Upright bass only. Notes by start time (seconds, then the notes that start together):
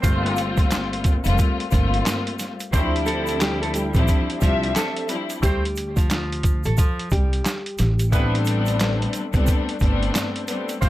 0.04 G1
1.26 F1
1.73 G1
2.73 D2
3.95 A1
4.42 C2
5.43 D2
6.65 A1
7.12 C2
7.79 A1
9.34 C2
9.81 G1
10.82 G1